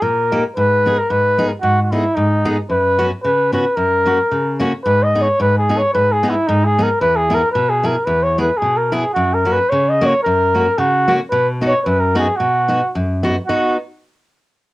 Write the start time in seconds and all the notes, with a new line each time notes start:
0.02 A#2 A#4
0.32 A#3 D#4 G4
0.56 G#2 B4
0.86 B3 D#4 G#4
0.98 A#4
1.10 G#2 B4
1.38 B3 D#4 G#4
1.48 A#4
1.61 G#2 F#4
1.82 F#4
1.91 B3 D#4 E4 G#4
2.15 G#2 D#4
2.45 B3 D#4 G#4
2.69 F#2 B4
2.99 B3 C#4 F#4
3.24 C#3 B4
3.52 B3 C#4 F#4 B4
3.76 F#2 A#4
4.06 A#3 C#4 F#4
4.32 C#3
4.60 A#3 C#4 F#4
4.85 G#2 B4
5.03 D#5
5.15 B3 D#4 G#4
5.21 C#5
5.40 G#2 B4
5.58 G#4
5.69 B3 D#4 G#4
5.78 C#5
5.94 G#2 B4
6.12 G#4
6.23 B3 D#4 G#4
6.30 E4
6.47 G#2 D#4
6.65 G#4
6.79 B3 D#4 G#4
6.83 A#4
7.01 E2 B4
7.16 G#4
7.30 B3 E4 G#4
7.34 A#4
7.52 B2 B4
7.69 G#4
7.83 B3 E4 G#4 A#4
8.05 E2 B4
8.23 C#5
8.38 B3 E4 G#4 B4
8.57 G#4
8.62 B2
8.77 A#4
8.92 B3 E4 G#4
9.13 F#2 F#4
9.34 A#4
9.45 A#3 C#4 F#4
9.52 B4
9.69 C#3 C#5
9.89 D#5
10.01 A#3 C#4 F#4 C#5
10.23 F#2 A#4
10.54 A#3 C#4 F#4
10.78 C#3 F#4
11.08 A#3 C#4 F#4
11.30 B2 B4
11.62 B3 D#4 F#4
11.67 C#5
11.81 B4 C#5
11.86 F#2
12.00 A#4
12.15 B3 D#4 F#4 G#4
12.36 B2 F#4
12.68 B3 D#4 F#4
12.95 F#2
13.23 B3 D#4 F#4
13.47 B3 D#4 F#4